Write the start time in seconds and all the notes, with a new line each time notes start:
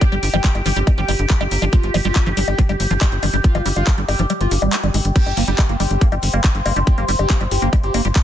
Already playing: G4
0.01 F3 G4, kick, closed hi-hat, high bongo
0.12 G1 G3, closed hi-hat
0.23 G1, open hi-hat
0.34 G1 F3 G4, closed hi-hat, high bongo
0.44 G3, kick, clap, closed hi-hat
0.55 G1, closed hi-hat, high bongo
0.66 G1 F3 G4, open hi-hat
0.76 G1 G3 C4, closed hi-hat
0.87 C4, kick, closed hi-hat, high bongo
0.98 G1 F3 G4, closed hi-hat
1.08 G1 G3, open hi-hat, high bongo
1.19 G1, closed hi-hat
1.30 F3, kick, clap, closed hi-hat
1.41 G1 G3, closed hi-hat, high bongo
1.51 G1 A#3, open hi-hat
1.62 G1 F3, closed hi-hat, high bongo
1.73 G3 F4, kick, closed hi-hat
1.83 G1, closed hi-hat
1.94 G1 F3, open hi-hat, high bongo
2.05 G1 G3 F4, closed hi-hat
2.16 kick, clap, closed hi-hat, high bongo
2.26 G1 F3, closed hi-hat
2.37 G1 G3 G4, open hi-hat
2.48 G1, closed hi-hat, high bongo
2.58 F3, kick, closed hi-hat
2.69 G1 G3, closed hi-hat, high bongo
2.80 G1, open hi-hat
2.91 G1 F3, closed hi-hat
3.01 G3, kick, clap, closed hi-hat, high bongo
3.12 G1, closed hi-hat
3.23 G1 F3, open hi-hat, high bongo
3.33 G1 G3, closed hi-hat
3.44 F4, kick, closed hi-hat
3.55 G1 F3, closed hi-hat, high bongo
3.66 G1 G3, open hi-hat
3.76 G1 F4, closed hi-hat, high bongo
3.87 F3, kick, clap, closed hi-hat
3.98 G1 G3, closed hi-hat
4.08 G1 G4, open hi-hat, high bongo
4.19 G1 F3, closed hi-hat
4.30 G3, closed hi-hat, high bongo
4.41 G1 F4, closed hi-hat
4.51 G1 G4, open hi-hat
4.62 G#1 G3, closed hi-hat, high bongo
4.73 A#3, clap, closed hi-hat
4.83 G1 G3, closed hi-hat, high bongo
4.94 G#1 G#3, open hi-hat
5.05 G1, closed hi-hat
5.16 G3 G4 C5, kick, closed hi-hat, crash
5.26 G1, closed hi-hat, high bongo
5.37 G1 A#3 C4, open hi-hat
5.48 G1 G3 C4 G4, closed hi-hat
5.59 kick, clap, closed hi-hat, high bongo
5.69 G1 A#3, closed hi-hat
5.80 G1 G3 G4, open hi-hat, high bongo
5.91 G1, closed hi-hat
6.01 A#3, kick, closed hi-hat
6.12 G1 G3, closed hi-hat, high bongo
6.23 G1, open hi-hat
6.33 G1 A#3, closed hi-hat, high bongo
6.44 G3, kick, clap, closed hi-hat
6.55 G1, closed hi-hat
6.66 G1 A#3, open hi-hat, high bongo
6.76 G1 G3 D4, closed hi-hat
6.87 D4 G4, kick, closed hi-hat, high bongo
6.98 G1 A#3, closed hi-hat
7.08 G1 G3, open hi-hat
7.19 G1 G4, closed hi-hat, high bongo
7.30 A#3, kick, clap, closed hi-hat
7.41 G1 G3, closed hi-hat, high bongo
7.51 G1 G4, open hi-hat
7.62 G1 A#3, closed hi-hat
7.73 G3, kick, closed hi-hat, high bongo
7.83 G1 G4, closed hi-hat
7.94 G1 A#3, open hi-hat, high bongo
8.05 G1 G3, closed hi-hat
8.16 kick, clap, closed hi-hat